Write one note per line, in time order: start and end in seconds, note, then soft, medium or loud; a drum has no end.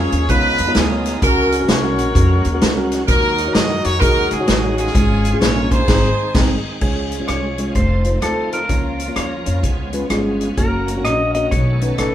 0.00 0.28 F3 medium
0.00 0.26 G#3 medium
0.00 0.22 C#4 medium
0.00 0.25 C#4 medium
0.00 0.28 C#4 medium
0.00 0.22 F4 medium
0.00 0.26 F4 medium
0.00 0.26 G#4 medium
0.00 0.22 A#4 medium
0.00 0.29 C#5 loud
0.12 0.26 D#2 medium
0.12 closed hi-hat medium
0.29 0.54 C#2 loud
0.29 1.02 C#3 medium
0.29 4.91 G#3 medium
0.29 1.21 B3 medium
0.29 0.60 B3 medium
0.29 1.21 D#4 medium
0.29 1.18 D#4 medium
0.29 0.60 D#4 medium
0.29 0.75 F4 medium
0.29 1.21 F4 medium
0.29 0.60 F4 medium
0.29 0.61 A#4 medium
0.29 0.76 B4 loud
0.29 0.61 C#5 medium
0.29 kick loud
0.29 closed hi-hat medium
0.58 0.73 F2 medium
0.58 closed hi-hat medium
0.67 0.82 B3 medium
0.67 0.82 D#4 medium
0.67 0.82 F4 medium
0.67 0.82 A#4 medium
0.67 0.82 C#5 medium
0.75 1.15 D2 medium
0.75 1.19 B3 medium
0.75 1.19 F4 medium
0.75 1.22 G#4 loud
0.75 snare loud
0.75 closed hi-hat medium
0.91 1.15 B3 medium
0.91 1.15 D#4 medium
0.91 1.15 F4 medium
0.91 1.15 A#4 medium
0.91 1.15 C#5 medium
1.05 snare soft
1.05 closed hi-hat medium
1.22 1.62 C#2 loud
1.22 3.06 C#3 medium
1.22 1.95 C#3 medium
1.22 4.91 F#3 medium
1.22 1.53 C#4 medium
1.22 2.12 C#4 medium
1.22 3.07 F#4 medium
1.22 1.68 F#4 medium
1.22 1.53 F#4 medium
1.22 1.66 A#4 loud
1.22 1.54 A#4 medium
1.22 kick loud
1.22 closed hi-hat medium
1.52 closed hi-hat medium
1.60 1.74 C#4 medium
1.60 1.75 F#4 medium
1.60 1.75 A#4 medium
1.68 1.99 C2 loud
1.68 2.88 F#4 medium
1.68 2.88 A#4 medium
1.68 2.92 C#5 medium
1.68 snare loud
1.68 closed hi-hat medium
1.83 2.08 C#4 medium
1.83 2.08 F#4 medium
1.83 2.08 A#4 medium
1.98 2.13 A#1 medium
1.98 closed hi-hat medium
2.15 2.41 F2 loud
2.15 2.46 C#4 medium
2.15 2.46 F#4 medium
2.15 2.47 A#4 medium
2.15 kick loud
2.15 closed hi-hat medium
2.45 2.59 D#2 loud
2.45 closed hi-hat medium
2.53 2.68 C#4 medium
2.53 2.68 F#4 medium
2.53 2.68 A#4 medium
2.61 3.01 C#2 medium
2.61 snare loud
2.61 closed hi-hat medium
2.77 3.01 C#4 medium
2.77 3.01 F#4 medium
2.77 3.01 A#4 loud
2.92 snare soft
2.92 closed hi-hat medium
3.08 3.48 D#2 loud
3.08 4.93 D#3 medium
3.08 3.81 D#3 medium
3.08 3.39 D#4 medium
3.08 3.98 D#4 medium
3.08 4.93 F#4 medium
3.08 3.98 F#4 medium
3.08 3.40 F#4 medium
3.08 3.51 A#4 loud
3.08 3.40 A#4 medium
3.08 kick loud
3.08 closed hi-hat loud
3.38 closed hi-hat medium
3.47 3.61 D#4 medium
3.47 3.61 F#4 medium
3.47 3.61 C#5 medium
3.54 3.80 F#2 medium
3.54 3.84 D#5 loud
3.54 snare loud
3.54 closed hi-hat medium
3.70 3.94 D#4 medium
3.70 3.94 F#4 medium
3.70 3.95 A#4 medium
3.84 3.99 F2 medium
3.84 4.01 C#5 loud
3.84 closed hi-hat medium
4.00 4.27 D#2 medium
4.00 4.32 D#4 medium
4.00 4.31 D#4 medium
4.00 4.33 F#4 medium
4.00 4.91 F#4 medium
4.00 4.33 G#4 medium
4.00 4.31 A#4 loud
4.00 kick loud
4.00 closed hi-hat medium
4.31 4.46 C#2 medium
4.31 4.91 D#4 medium
4.31 4.74 G#4 medium
4.31 closed hi-hat medium
4.40 4.54 D#4 medium
4.40 4.54 F#4 medium
4.40 4.55 C#5 medium
4.48 4.88 A1 medium
4.48 snare loud
4.48 closed hi-hat medium
4.63 4.87 D#4 medium
4.63 4.87 F#4 medium
4.63 4.88 C#5 medium
4.77 5.68 C#4 medium
4.77 5.68 F4 medium
4.77 5.36 G#4 loud
4.77 closed hi-hat medium
4.86 snare soft
4.94 5.34 G#1 loud
4.94 5.68 G#2 medium
4.94 5.87 F3 medium
4.94 5.87 G#3 medium
4.94 5.87 C#4 medium
4.94 5.26 C#4 medium
4.94 5.26 F4 medium
4.94 5.87 G#4 medium
4.94 5.26 G#4 medium
4.94 kick loud
4.94 closed hi-hat medium
5.25 closed hi-hat medium
5.33 5.47 C#4 medium
5.33 5.48 F4 medium
5.33 5.48 G#4 medium
5.40 5.81 A#1 loud
5.40 5.71 C#5 loud
5.40 snare loud
5.40 closed hi-hat medium
5.57 5.81 C#4 medium
5.57 5.81 F4 medium
5.57 5.81 A#4 medium
5.71 6.61 D#4 medium
5.71 6.61 G#4 medium
5.71 6.34 C5 loud
5.71 kick loud
5.71 closed hi-hat medium
5.88 6.09 G#1 loud
5.88 6.09 G#2 loud
5.88 6.80 D#3 medium
5.88 6.80 G#3 medium
5.88 6.08 C4 medium
5.88 6.81 C4 medium
5.88 6.09 D#4 loud
5.88 6.80 G#4 medium
5.88 6.09 G#4 medium
5.88 kick loud
5.88 snare loud
5.88 crash medium
6.34 6.55 G#1 medium
6.34 6.55 C4 loud
6.34 6.55 D#4 loud
6.34 kick loud
6.34 snare loud
6.34 crash medium
6.81 7.21 C#2 loud
6.81 7.55 C#3 soft
6.81 10.53 F3 medium
6.81 7.74 G#3 medium
6.81 7.12 G#3 medium
6.81 7.74 G#3 medium
6.81 7.74 C#4 medium
6.81 7.13 C#4 soft
6.81 7.74 F4 medium
6.81 7.13 F4 medium
6.81 7.30 G#4 medium
6.81 7.74 G#4 medium
6.81 7.13 C#5 medium
6.81 kick medium
6.81 crash medium
7.11 closed hi-hat medium
7.20 7.45 G#3 medium
7.20 7.45 C#4 medium
7.20 7.45 F4 medium
7.20 7.45 C#5 medium
7.28 7.68 C2 medium
7.28 7.72 C#5 medium
7.28 cross-stick loud
7.28 closed hi-hat medium
7.58 7.75 G#3 medium
7.58 7.75 C#4 medium
7.58 7.76 F4 medium
7.58 7.76 C#5 medium
7.58 closed hi-hat medium
7.75 8.15 F1 medium
7.75 8.68 A3 medium
7.75 8.68 C4 soft
7.75 8.68 C4 medium
7.75 8.68 D#4 medium
7.75 10.55 F4 medium
7.75 8.68 A4 medium
7.75 8.24 C5 medium
7.75 kick medium
7.75 closed hi-hat medium
8.04 8.17 A3 medium
8.04 8.17 D#4 medium
8.04 8.17 F4 medium
8.04 8.18 C5 medium
8.04 closed hi-hat medium
8.21 8.62 D2 medium
8.21 8.59 A3 medium
8.21 8.59 D#4 medium
8.21 8.59 F4 medium
8.21 8.51 A4 medium
8.21 8.60 C5 medium
8.21 cross-stick medium
8.21 closed hi-hat medium
8.52 9.19 A#4 medium
8.52 cross-stick soft
8.52 closed hi-hat medium
8.68 9.09 C#2 medium
8.68 9.43 C#3 medium
8.68 9.63 F3 medium
8.68 9.00 A#3 medium
8.68 9.62 A#3 medium
8.68 12.15 C#4 medium
8.68 9.00 C#4 medium
8.68 12.15 C#4 medium
8.68 9.00 F4 soft
8.68 9.62 A#4 medium
8.68 9.01 C#5 medium
8.68 kick medium
8.68 closed hi-hat medium
8.99 closed hi-hat medium
9.08 9.33 A#3 medium
9.08 9.33 C#4 medium
9.08 9.33 F4 medium
9.08 9.33 C#5 medium
9.16 9.42 D#2 medium
9.16 10.37 C#5 medium
9.16 cross-stick loud
9.16 closed hi-hat medium
9.46 9.61 F2 medium
9.46 9.63 A#3 medium
9.46 9.63 C#4 medium
9.46 9.63 F4 soft
9.46 9.64 C#5 medium
9.46 closed hi-hat medium
9.63 10.03 C#2 medium
9.63 10.37 C#3 medium
9.63 10.57 G#3 medium
9.63 10.56 B3 medium
9.63 10.57 B3 medium
9.63 10.56 G#4 medium
9.63 kick medium
9.63 closed hi-hat medium
9.93 10.05 G#3 medium
9.93 10.05 C#4 medium
9.93 10.05 F4 medium
9.93 10.06 B4 medium
9.93 closed hi-hat medium
10.10 10.50 G1 medium
10.10 10.47 G#3 medium
10.10 10.47 C#4 medium
10.10 10.47 F4 medium
10.10 10.48 G#4 medium
10.10 cross-stick loud
10.10 closed hi-hat medium
10.41 closed hi-hat medium
10.57 11.04 F#1 medium
10.57 11.50 F#3 medium
10.57 11.51 F#3 medium
10.57 10.88 A#3 medium
10.57 11.51 A#3 medium
10.57 10.88 C#4 medium
10.57 10.89 F#4 medium
10.57 11.51 F#4 medium
10.57 11.51 A#4 medium
10.57 11.06 A#4 medium
10.57 10.89 C#5 medium
10.57 kick medium
10.57 closed hi-hat medium
10.88 closed hi-hat medium
10.96 11.21 A#3 medium
10.96 11.21 C#4 medium
10.96 11.21 F#4 medium
10.96 11.22 C#5 medium
11.04 11.44 A#1 medium
11.04 11.33 D#5 loud
11.04 cross-stick medium
11.04 closed hi-hat medium
11.35 11.51 A#3 medium
11.35 11.52 C#4 medium
11.35 11.52 F#4 medium
11.35 11.52 A#4 medium
11.35 11.52 D#5 medium
11.35 closed hi-hat medium
11.51 11.91 B1 medium
11.51 12.15 B2 medium
11.51 12.15 D#3 medium
11.51 12.15 A3 medium
11.51 12.15 B3 medium
11.51 12.15 D#4 medium
11.51 12.15 A4 medium
11.51 12.00 C#5 medium
11.51 kick loud
11.51 closed hi-hat medium
11.81 11.93 A3 medium
11.81 11.93 C#4 medium
11.81 11.94 D#4 medium
11.81 11.94 B4 medium
11.81 closed hi-hat medium
11.98 12.15 A1 medium
11.98 12.15 A3 medium
11.98 12.15 C#4 medium
11.98 12.15 D#4 medium
11.98 12.15 A4 medium
11.98 12.15 B4 medium
11.98 cross-stick loud
11.98 closed hi-hat medium